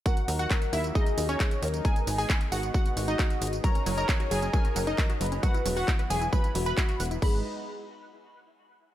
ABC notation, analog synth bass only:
X:1
M:4/4
L:1/8
Q:1/4=134
K:G#m
V:1 name="Analog synth bass" clef=bass
z D,, z D,, z D,, z D,, | z G,,, z G,,, z G,,, z G,,, | z F,,, z F,,, z F,,, z F,,, | z E,,, z E,,, z E,,, z E,,, |
G,,, z6 z |]